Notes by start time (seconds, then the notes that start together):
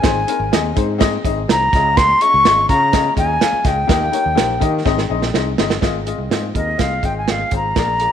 Already playing: G#5
0.02 G#1 C4 D#4 G#4 C5, kick, snare, closed hi-hat
0.27 C4 D#4 G#4 A#4, closed hi-hat
0.40 G#1
0.52 D#2 C4 D#4 G#4 D#5, snare, closed hi-hat
0.75 G#2 C4 D#4 G#4 C5, kick, closed hi-hat
0.98 C4 D#4 G#4 D#5, kick, snare, closed hi-hat
1.24 G#1 C4 D#4 G#4 D#5, kick, closed hi-hat
1.48 C2 C4 D#4 G#4 C5 A#5, snare, closed hi-hat
1.73 C#2 C#4 F4 G#4 D#5, kick, snare, closed hi-hat
1.97 C6, kick, snare, closed hi-hat
2.20 C#4 F4 G#4 D#5 C#6, closed hi-hat
2.34 C#2
2.45 G#1 C#4 F4 G#4 D#5, snare, closed hi-hat
2.69 C#3 C#4 F4 G#4 F5 A#5, kick, closed hi-hat
2.92 C#4 F4 G#4 D#5, kick, snare, closed hi-hat
3.16 D#2 C#4 F4 G#4 D#5 G#5, kick, closed hi-hat
3.41 C#4 F4 G#4 F5, snare, closed hi-hat
3.53 muted fretless electric bass stroke
3.63 C#2 C#4 F4 G#4 D#5, kick, snare, closed hi-hat
3.67 G5
3.87 D#2 A#3 D#4 G4 D#5, kick, snare, closed hi-hat
4.12 A#3 D#4 G4 C#5, closed hi-hat
4.26 D#2
4.35 A#1 A#3 D#4 G4 C5, snare, closed hi-hat
4.60 D#3 A#3 D#4 G4 D#5, kick, closed hi-hat
4.85 G#1 C4 D#4 G#4 D#5, kick, snare
4.98 snare
5.09 A#1 C4 D#4 G#4 D#5
5.22 snare
5.34 C2 C4 D#4 G#4 D#5, snare
5.58 G1 C4 D#4 G#4 D#5, snare
5.70 snare
5.81 G#1 C4 F4 G#4 D#5, kick, snare, closed hi-hat
6.06 C4 F4 G#4 D#5, closed hi-hat
6.18 C2
6.30 G#2 C4 F4 G#4 D#5, snare, closed hi-hat
6.54 D#2 C4 F4 G#4 A#4 D#5, kick, closed hi-hat
6.77 C2 C4 F4 G#4 D#5 F5, kick, snare, closed hi-hat
7.02 G#1 C4 F4 G#4 D#5 G5, kick, closed hi-hat
7.18 G#5
7.28 C4 F4 G#4 D#5 F5, snare, closed hi-hat
7.51 G#1 C4 F4 G#4 C5, kick, closed hi-hat
7.56 A#5
7.76 A#1 A#3 F4 G#4 D5, kick, snare, closed hi-hat
7.99 A#3 F4 G#4 D5, closed hi-hat